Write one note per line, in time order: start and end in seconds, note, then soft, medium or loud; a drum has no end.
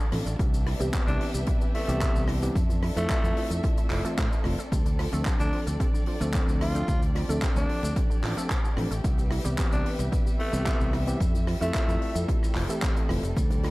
0.00 0.12 D3 medium
0.00 9.00 D4 medium
0.00 0.35 F4 medium
0.00 0.35 A4 medium
0.00 0.35 D5 medium
0.00 shaker medium
0.12 0.22 A1 medium
0.12 0.23 F3 medium
0.12 0.18 F3 medium
0.12 0.24 C4 medium
0.12 0.24 D4 medium
0.12 0.24 A4 medium
0.12 cross-stick medium
0.12 open hi-hat loud
0.26 0.35 A1 medium
0.26 0.39 A3 medium
0.26 closed hi-hat medium
0.26 shaker medium
0.39 0.73 C2 loud
0.39 0.48 B2 medium
0.39 2.54 G4 medium
0.39 2.54 B4 medium
0.39 2.54 E5 medium
0.39 kick loud
0.39 closed hi-hat medium
0.39 shaker medium
0.53 0.58 C3 medium
0.53 closed hi-hat medium
0.53 shaker soft
0.66 0.80 E3 medium
0.66 cross-stick medium
0.66 open hi-hat loud
0.79 0.89 C2 medium
0.79 1.85 E3 medium
0.79 0.89 G3 loud
0.79 1.85 B3 medium
0.79 1.85 C4 medium
0.79 1.86 G4 medium
0.79 closed hi-hat medium
0.79 shaker medium
0.93 0.99 B2 loud
0.93 kick loud
0.93 clap loud
0.93 closed hi-hat medium
0.93 shaker medium
1.07 1.16 C2 loud
1.07 1.20 C3 loud
1.07 1.27 D4 medium
1.07 closed hi-hat soft
1.07 shaker soft
1.20 1.26 E3 medium
1.20 open hi-hat loud
1.34 1.43 C2 medium
1.34 1.47 G3 medium
1.34 closed hi-hat medium
1.34 shaker medium
1.46 1.56 B2 loud
1.46 kick loud
1.46 closed hi-hat loud
1.46 shaker medium
1.61 1.66 C3 medium
1.61 shaker soft
1.74 1.88 E3 medium
1.74 2.29 A3 medium
1.74 open hi-hat loud
1.88 2.07 C2 medium
1.88 2.39 E3 medium
1.88 1.97 G3 loud
1.88 2.39 B3 medium
1.88 2.39 C4 medium
1.88 2.39 G4 loud
1.88 closed hi-hat medium
1.88 shaker medium
2.01 2.07 B2 loud
2.01 kick loud
2.01 clap loud
2.01 closed hi-hat medium
2.01 shaker medium
2.15 2.49 C2 medium
2.15 2.28 C3 medium
2.15 shaker medium
2.28 2.34 E3 medium
2.28 cross-stick medium
2.28 open hi-hat loud
2.42 2.53 E3 medium
2.42 2.55 G3 medium
2.42 2.53 B3 medium
2.42 2.53 C4 medium
2.42 2.54 G4 loud
2.42 closed hi-hat medium
2.42 shaker medium
2.55 2.89 F2 loud
2.55 2.65 C3 medium
2.55 9.00 C4 medium
2.55 6.84 A4 medium
2.55 4.70 E5 medium
2.55 kick loud
2.55 closed hi-hat medium
2.55 shaker medium
2.70 2.75 E3 medium
2.70 closed hi-hat medium
2.70 shaker medium
2.83 2.96 F3 medium
2.83 cross-stick medium
2.83 open hi-hat loud
2.95 3.05 F2 medium
2.95 4.01 A3 medium
2.95 3.05 A3 loud
2.95 3.51 A3 loud
2.95 4.01 C4 medium
2.95 4.01 E4 medium
2.95 4.02 F4 medium
2.95 closed hi-hat medium
2.95 shaker medium
3.10 3.15 C3 loud
3.10 kick loud
3.10 clap loud
3.10 closed hi-hat medium
3.10 shaker medium
3.24 3.32 F2 loud
3.24 3.36 E3 loud
3.24 closed hi-hat medium
3.24 shaker medium
3.37 3.42 F3 medium
3.37 muted fingered electric bass stroke soft
3.37 open hi-hat loud
3.50 3.59 F2 medium
3.50 3.63 A3 medium
3.50 closed hi-hat medium
3.50 shaker medium
3.64 3.73 C3 loud
3.64 kick loud
3.64 closed hi-hat medium
3.64 shaker medium
3.77 3.83 E3 medium
3.77 closed hi-hat medium
3.77 shaker medium
3.90 4.00 F1 medium
3.90 4.04 F3 medium
3.90 clap medium
3.90 open hi-hat loud
4.04 4.15 E3 medium
4.04 4.15 A3 medium
4.04 4.13 A3 loud
4.04 4.16 C4 medium
4.04 4.16 F4 medium
4.04 muted fingered electric bass stroke soft
4.04 closed hi-hat medium
4.04 shaker medium
4.17 4.27 A2 medium
4.17 4.23 C3 loud
4.17 kick loud
4.17 clap loud
4.17 closed hi-hat medium
4.17 shaker medium
4.32 4.44 E3 medium
4.32 shaker soft
4.44 4.54 F1 medium
4.44 4.56 E3 medium
4.44 4.50 F3 medium
4.44 4.56 A3 medium
4.44 4.56 C4 medium
4.44 4.56 F4 medium
4.44 cross-stick medium
4.44 open hi-hat loud
4.58 4.71 A3 medium
4.58 closed hi-hat medium
4.58 shaker medium
4.72 5.06 D2 loud
4.72 4.81 C3 medium
4.72 9.00 D5 medium
4.72 kick loud
4.72 closed hi-hat medium
4.72 shaker medium
4.86 4.91 D3 medium
4.86 closed hi-hat medium
4.86 shaker medium
4.99 5.12 F3 medium
4.99 cross-stick medium
4.99 open hi-hat loud
5.12 5.22 D2 medium
5.12 6.17 F3 medium
5.12 5.21 A3 loud
5.12 6.17 C4 medium
5.12 6.18 D4 medium
5.12 6.18 A4 medium
5.12 closed hi-hat medium
5.12 shaker medium
5.25 5.31 C3 loud
5.25 kick loud
5.25 clap loud
5.25 closed hi-hat medium
5.25 shaker medium
5.39 5.49 D2 loud
5.39 5.52 D3 loud
5.39 5.59 D4 medium
5.39 closed hi-hat medium
5.39 shaker medium
5.53 5.58 F3 medium
5.53 open hi-hat loud
5.67 5.76 D2 medium
5.67 5.79 A3 medium
5.67 closed hi-hat medium
5.67 shaker medium
5.80 5.89 C3 loud
5.80 kick loud
5.80 closed hi-hat medium
5.80 shaker medium
5.94 5.99 D3 medium
5.94 shaker medium
6.06 6.20 F3 medium
6.06 open hi-hat loud
6.20 6.39 D2 medium
6.20 6.71 F3 medium
6.20 6.29 A3 loud
6.20 6.72 C4 medium
6.20 6.72 D4 medium
6.20 6.72 A4 loud
6.20 closed hi-hat medium
6.20 shaker medium
6.34 6.39 C3 loud
6.34 kick loud
6.34 clap loud
6.34 closed hi-hat medium
6.34 shaker medium
6.48 6.81 D2 medium
6.48 6.60 D3 medium
6.48 shaker medium
6.61 6.66 F3 medium
6.61 7.02 F4 medium
6.61 cross-stick medium
6.61 open hi-hat loud
6.74 6.85 F3 loud
6.74 6.87 A3 medium
6.74 6.86 C4 medium
6.74 6.86 D4 medium
6.74 6.86 A4 loud
6.74 closed hi-hat medium
6.74 shaker medium
6.88 7.22 D2 loud
6.88 6.97 C3 medium
6.88 11.17 G4 medium
6.88 kick loud
6.88 closed hi-hat medium
6.88 shaker medium
7.02 7.07 D3 medium
7.02 closed hi-hat medium
7.02 shaker medium
7.15 7.28 F3 medium
7.15 cross-stick medium
7.15 open hi-hat loud
7.28 7.38 D2 medium
7.28 8.33 F3 medium
7.28 7.37 A3 loud
7.28 8.34 C4 medium
7.28 8.34 D4 medium
7.28 8.34 A4 medium
7.28 closed hi-hat medium
7.28 shaker medium
7.42 7.47 C3 loud
7.42 kick loud
7.42 clap loud
7.42 closed hi-hat medium
7.42 shaker medium
7.56 7.65 D2 loud
7.56 7.68 D3 loud
7.56 7.96 D4 medium
7.56 closed hi-hat medium
7.56 shaker medium
7.69 7.74 F3 medium
7.69 muted fingered electric bass stroke soft
7.69 open hi-hat loud
7.83 7.92 D2 medium
7.83 7.95 A3 medium
7.83 closed hi-hat medium
7.83 shaker medium
7.96 8.05 C3 loud
7.96 kick loud
7.96 closed hi-hat medium
7.96 shaker medium
8.10 8.15 D3 medium
8.10 shaker medium
8.23 8.33 A1 medium
8.23 8.36 F3 medium
8.23 clap medium
8.23 open hi-hat loud
8.37 8.48 F3 medium
8.37 8.45 A3 loud
8.37 8.48 C4 medium
8.37 8.48 D4 medium
8.37 8.48 A4 medium
8.37 closed hi-hat medium
8.37 shaker medium
8.50 8.56 C3 loud
8.50 kick loud
8.50 clap loud
8.50 closed hi-hat loud
8.50 shaker medium
8.64 8.76 D3 medium
8.64 shaker medium
8.77 8.87 A1 medium
8.77 8.88 F3 medium
8.77 8.82 F3 medium
8.77 8.89 C4 medium
8.77 8.89 D4 medium
8.77 8.89 A4 medium
8.77 cross-stick medium
8.77 open hi-hat loud
8.91 9.00 A1 medium
8.91 9.03 A3 medium
8.91 closed hi-hat medium
8.91 shaker medium
9.04 9.38 C2 loud
9.04 9.13 B2 medium
9.04 13.71 G3 medium
9.04 11.18 B4 medium
9.04 13.33 E5 medium
9.04 kick loud
9.04 closed hi-hat medium
9.04 shaker medium
9.18 9.23 C3 medium
9.18 closed hi-hat medium
9.18 shaker medium
9.31 9.44 E3 medium
9.31 cross-stick medium
9.31 open hi-hat loud
9.44 9.54 C2 medium
9.44 10.49 E3 medium
9.44 9.53 G3 loud
9.44 10.50 B3 medium
9.44 10.50 C4 medium
9.44 10.50 G4 loud
9.44 closed hi-hat medium
9.44 shaker medium
9.58 9.63 B2 loud
9.58 kick loud
9.58 clap loud
9.58 closed hi-hat medium
9.58 shaker medium
9.72 9.81 C2 loud
9.72 9.85 C3 loud
9.72 9.92 D4 medium
9.72 closed hi-hat medium
9.72 shaker medium
9.85 9.91 E3 medium
9.85 open hi-hat loud
9.99 10.08 C2 medium
9.99 10.12 G3 medium
9.99 closed hi-hat medium
9.99 shaker medium
10.12 10.21 B2 loud
10.12 kick loud
10.12 closed hi-hat medium
10.12 shaker medium
10.26 10.31 C3 medium
10.26 shaker soft
10.39 10.52 E3 medium
10.39 10.94 A3 loud
10.39 open hi-hat loud
10.53 10.71 C2 medium
10.53 11.04 E3 loud
10.53 10.62 G3 loud
10.53 11.04 B3 medium
10.53 11.04 C4 medium
10.53 11.04 G4 loud
10.53 closed hi-hat medium
10.53 shaker medium
10.66 10.72 B2 loud
10.66 kick loud
10.66 clap loud
10.66 closed hi-hat medium
10.66 shaker medium
10.80 11.14 C2 medium
10.80 10.93 C3 medium
10.80 shaker medium
10.93 10.99 E3 medium
10.93 cross-stick medium
10.93 open hi-hat loud
11.07 11.18 E3 loud
11.07 11.20 G3 medium
11.07 11.18 B3 medium
11.07 11.18 C4 medium
11.07 11.18 G4 loud
11.07 closed hi-hat medium
11.07 shaker medium
11.20 11.54 F2 loud
11.20 11.29 C3 medium
11.20 13.71 C4 medium
11.20 13.71 A4 medium
11.20 kick loud
11.20 closed hi-hat loud
11.20 shaker medium
11.34 11.39 E3 medium
11.34 closed hi-hat medium
11.34 shaker medium
11.47 11.61 F3 medium
11.47 cross-stick medium
11.47 open hi-hat loud
11.60 11.70 F2 medium
11.60 11.70 A3 loud
11.60 12.66 A3 medium
11.60 12.15 A3 medium
11.60 12.66 C4 medium
11.60 12.66 E4 medium
11.60 12.67 F4 medium
11.60 closed hi-hat medium
11.60 shaker medium
11.74 11.80 C3 loud
11.74 kick loud
11.74 clap loud
11.74 closed hi-hat medium
11.74 shaker medium
11.88 11.97 F2 loud
11.88 12.01 E3 loud
11.88 closed hi-hat medium
11.88 shaker medium
12.01 12.07 F3 medium
12.01 muted fingered electric bass stroke soft
12.01 open hi-hat loud
12.15 12.24 F2 medium
12.15 12.28 A3 medium
12.15 closed hi-hat medium
12.15 shaker medium
12.28 12.37 C3 loud
12.28 kick loud
12.28 closed hi-hat medium
12.28 shaker medium
12.42 12.47 E3 medium
12.42 cross-stick medium
12.42 shaker medium
12.55 12.65 F1 medium
12.55 12.69 F3 medium
12.55 clap medium
12.55 open hi-hat loud
12.69 13.06 E3 medium
12.69 13.06 A3 medium
12.69 12.78 A3 loud
12.69 13.06 C4 medium
12.69 13.07 G4 medium
12.69 closed hi-hat medium
12.69 shaker medium
12.82 12.88 C3 loud
12.82 kick loud
12.82 clap loud
12.82 closed hi-hat medium
12.82 shaker medium
12.96 13.09 E3 medium
12.96 closed hi-hat medium
12.96 shaker medium
13.09 13.19 F1 medium
13.09 13.21 E3 medium
13.09 13.15 F3 medium
13.09 13.21 A3 medium
13.09 13.21 C4 medium
13.09 13.21 F4 medium
13.09 cross-stick medium
13.09 open hi-hat loud
13.23 13.32 F1 medium
13.23 13.36 A3 medium
13.23 closed hi-hat medium
13.23 shaker medium
13.36 13.70 D2 loud
13.36 13.46 C3 medium
13.36 13.71 D5 medium
13.36 kick loud
13.36 closed hi-hat loud
13.36 cabasa medium
13.36 shaker medium
13.50 13.56 D3 medium
13.50 closed hi-hat medium
13.50 low conga medium
13.50 cabasa soft
13.50 shaker medium
13.63 13.71 F3 medium
13.63 cross-stick medium
13.63 open hi-hat loud